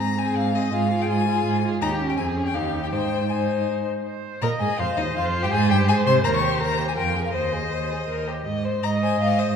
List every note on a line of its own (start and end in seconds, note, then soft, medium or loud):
0.00 0.33 G#2 medium
0.00 0.18 C4 soft
0.00 0.17 G#4 soft
0.00 0.20 A#5 medium
0.18 0.55 C4 soft
0.18 0.54 G#4 soft
0.18 0.38 G#5 medium
0.36 0.69 G#2 medium
0.36 0.57 F5 medium
0.55 0.73 C4 soft
0.55 0.72 G#4 soft
0.55 0.74 D#5 medium
0.73 1.06 G#2 medium
0.73 0.91 F4 soft
0.73 0.91 G#4 soft
0.73 1.03 F5 medium
0.91 1.27 F4 soft
0.91 1.27 G#4 soft
1.02 1.09 G5 medium
1.09 1.42 G#2 medium
1.09 1.63 G#5 medium
1.27 1.64 F4 medium
1.27 1.63 G#4 medium
1.46 1.78 G#2 medium
1.64 1.82 F4 soft
1.64 1.82 G#4 soft
1.82 2.16 D#2 medium
1.82 1.90 D#4 soft
1.82 2.16 G4 medium
1.82 1.90 A#5 medium
2.00 2.20 C#4 medium
2.09 2.13 G5 medium
2.17 2.54 F2 medium
2.17 2.38 C4 medium
2.17 2.56 G#4 soft
2.17 2.25 G#5 medium
2.37 2.56 C#4 soft
2.46 2.56 G5 medium
2.54 2.93 D#2 medium
2.54 2.92 D#4 soft
2.54 2.94 G4 soft
2.54 2.83 F5 medium
2.83 2.87 G5 soft
2.92 3.86 G#2 soft
2.92 3.29 D#4 soft
2.92 3.29 C5 soft
2.92 3.31 G5 medium
3.29 3.86 D#4 soft
3.29 3.85 C5 soft
3.29 3.67 G#5 soft
4.06 4.44 C5 soft
4.42 4.50 A#2 medium
4.42 4.50 A#4 medium
4.42 4.81 D#5 medium
4.42 4.49 A#5 medium
4.60 4.68 G#2 soft
4.60 4.78 G#4 soft
4.60 4.80 G#5 medium
4.79 4.86 F2 medium
4.79 4.87 F4 medium
4.79 6.97 C5 medium
4.79 4.99 F5 medium
4.97 5.15 D#2 soft
4.97 5.05 D#4 soft
4.97 5.15 D#5 medium
5.15 5.45 F2 medium
5.15 5.44 F4 medium
5.15 5.24 F5 medium
5.43 5.52 G2 medium
5.43 5.53 G4 medium
5.43 5.48 G5 medium
5.51 5.72 G#2 medium
5.51 5.71 G#4 medium
5.51 5.70 G#5 medium
5.70 5.90 G2 medium
5.70 5.89 G4 medium
5.70 5.78 G5 medium
5.88 6.06 G#2 medium
5.88 6.05 G#4 medium
5.88 5.96 G#5 medium
6.05 6.24 C3 medium
6.05 6.23 C5 medium
6.05 6.14 C6 medium
6.24 6.57 D#2 medium
6.24 6.43 A#4 medium
6.24 6.28 A#5 loud
6.34 6.53 C#6 medium
6.41 6.61 G4 medium
6.52 6.59 C6 medium
6.60 6.93 D#2 medium
6.60 6.79 A#4 soft
6.60 6.87 A#5 medium
6.78 6.96 G4 soft
6.88 6.92 G#5 medium
6.96 7.31 F2 medium
6.96 7.17 F4 soft
6.96 7.36 A#4 medium
6.96 7.24 G5 medium
7.15 7.32 G#4 soft
7.25 7.33 F5 medium
7.33 7.68 D#2 medium
7.33 7.54 C5 soft
7.33 8.28 C5 soft
7.33 8.25 D#5 medium
7.52 7.72 G#4 soft
7.71 8.05 D#2 soft
7.71 7.92 C5 soft
7.90 8.08 G#4 soft
8.08 8.42 D#2 soft
8.08 8.29 A#4 soft
8.27 8.46 G4 soft
8.47 8.79 G#2 medium
8.47 8.66 D#5 soft
8.65 8.86 C5 soft
8.83 9.16 G#2 medium
8.83 9.56 D#5 medium
8.83 9.04 D#5 soft
8.83 8.91 A#5 medium
9.03 9.20 C5 soft
9.03 9.20 G#5 medium
9.20 9.52 G#2 medium
9.20 9.40 D#5 soft
9.20 9.40 F5 medium
9.39 9.56 C5 soft
9.39 9.56 D#5 medium